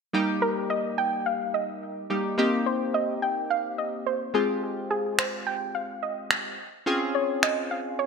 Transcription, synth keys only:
0.13 G3 A#3 D#4 G4
2.10 G3 A#3 D#4 G4
2.38 A#3 C4 D#4 G4
4.34 G#3 C4 F4 G4
6.86 C4 C#4 F4 G#4

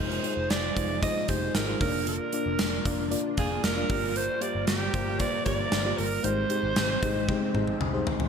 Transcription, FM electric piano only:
Already playing: G#3 D#4 F4
0.00 C5
0.23 G#3 D#4 F4 C5
0.75 G#3 D#4 F4 C5
1.02 G#3 D#4 F4 C5
1.28 G#3 D#4 F4 G4
1.67 G#3 D#4 F4 C5
1.81 A#3 D4 F4 C#5
1.88 D5
2.33 A#3 D4 F4 D5
2.85 A#3 D4 F4 D5
3.10 A#3 D4 F4 D5
3.37 A#3 D4 F4 F5
3.76 A#3 D4 F4 D5
3.89 G2 A#3 F4 G4 D5
4.41 A#3 F4 G4 C5
4.49 D5
4.93 A#3 F4 G4 C5
5.19 A#3 F4 G4 C5
5.46 A#3 F4 G4 D5
5.85 A#3 F4 G4 D5
6.24 G#2 G#3 D#4 G4 C5
6.49 G#3 D#4 G4 C5
7.02 G#3 D#4 G4 C5 D#5
7.28 G#3 D#4 G4 C5 G5
7.54 G#3 D#4 G4 C5
7.81 G#5
7.93 G#3 D#4 G4 C5
8.07 A#5

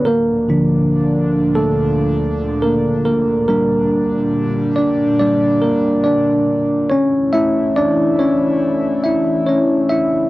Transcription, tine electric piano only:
0.05 A#3 A#4
0.49 D3 F3 D4
1.55 A3 A4
2.62 A#3 A#4
3.05 A#3 A#4
3.48 G3 A#3 D4 A#4
4.76 D4 D5
5.20 G3 A#3 D4 D5
5.62 A#3 A#4
6.04 D4 D5
6.90 C#4 C#5
7.33 A3 E4 E5
7.76 D4 D5
8.19 C#4 C#5
9.04 E4 E5
9.46 C#4 C#5
9.89 E4 E5

